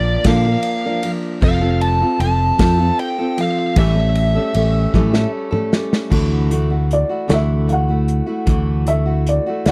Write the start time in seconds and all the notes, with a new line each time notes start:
Already playing: A#1 F3 A#3 D4 A#4 D5
0.24 A#2 D3 F3 A#3 D4 A#4 F5, kick, snare, ride
0.46 F3 A#3 D4 A#4
0.63 ride
0.85 F3 A#3 D4 A#4
1.03 F3 A#3 D4 A#4, ride
1.41 F1 F3 C4 F4 A4 F5, kick, crash
1.60 C4 F4 A4
1.81 A5, ride
2.00 C4 F4 A4
2.20 F1 F3 C4 F4 A4 A5, ride
2.58 F2 F3 C4 F4 A4, kick, snare, ride
2.78 C4 F4 A4
2.99 G5, ride
3.18 C4 F4 A4
3.37 F3 C4 F4 A4 F5, ride
3.76 A1 A2 E3 G3 A3 C#4 A4 E5, kick, ride
3.95 G3 A3 C#4 A4
4.15 ride
4.35 G3 A3 C#4 A4
4.53 A1 G3 A3 C#4 A4, ride
4.94 A2 E3 G3 A3 C#4 A4, kick, high tom
5.13 G3 A3 C#4 A4, snare
5.51 G3 A3 C#4 A4, mid tom
5.72 G3 A3 C#4 A4, snare
5.93 snare
6.10 D2 D3 E3 A3 E4 F#4, kick, crash
6.50 E3 A3 E4 F#4, closed hi-hat
6.70 A3 E4 F#4
6.91 D5, closed hi-hat
7.09 A3 E4 F#4
7.28 D2 D3 E3 A3 E4 F#4, snare, closed hi-hat
7.33 E5
7.67 E3 A3 E4 F#4 F5, closed hi-hat
7.72 F#5
7.88 A3 E4 F#4
8.08 closed hi-hat
8.26 A3 E4 F#4
8.46 D2 D3 E3 A3 E4 F#4, kick, closed hi-hat
8.86 E3 A3 E4 F#4 E5, closed hi-hat
9.06 A3 E4 F#4
9.27 D5, closed hi-hat
9.46 A3 E4 F#4
9.66 D2 D3 A3 D5 F#5, snare, closed hi-hat